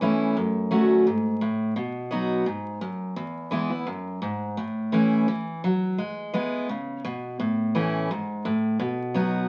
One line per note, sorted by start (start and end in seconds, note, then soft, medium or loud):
0.00 0.33 E2 medium
0.00 0.35 E3 medium
0.00 0.35 A3 medium
0.00 0.35 C#4 loud
0.00 0.36 E4 loud
0.37 1.04 F#2 medium
0.71 1.05 F#3 medium
0.71 1.05 A3 medium
0.71 1.05 C#4 medium
0.71 1.05 F#4 medium
1.07 1.40 G#2 medium
1.41 1.75 A2 medium
1.76 2.44 B2 medium
2.11 2.45 F#3 medium
2.11 2.45 B3 medium
2.11 2.46 D#4 medium
2.11 2.46 F#4 loud
2.46 2.80 G#2 medium
2.81 3.15 F#2 medium
3.16 3.84 E2 medium
3.51 3.70 E3 medium
3.51 3.71 G#3 medium
3.51 3.71 B3 medium
3.51 3.69 E4 loud
3.70 3.87 B3 soft
3.70 3.86 E4 medium
3.87 4.21 F#2 medium
4.22 4.56 G#2 medium
4.57 5.25 A2 medium
4.92 5.26 E3 medium
4.92 5.27 A3 medium
4.92 5.27 C#4 medium
4.92 5.27 E4 loud
5.28 5.62 E3 medium
5.64 5.97 F#3 medium
5.98 6.32 G#3 medium
6.34 6.67 G#3 medium
6.34 6.68 B3 loud
6.34 6.68 E4 loud
6.69 7.03 C#3 medium
7.05 7.38 B2 loud
7.40 8.07 A2 medium
7.75 8.09 E3 medium
7.75 8.09 A3 medium
7.75 8.09 C#4 loud
7.75 8.09 E4 medium
8.11 8.44 G#2 medium
8.45 8.79 A2 loud
8.79 9.47 B2 loud
9.14 9.48 F#3 medium
9.14 9.48 B3 medium
9.14 9.48 D#4 loud
9.14 9.48 F#4 loud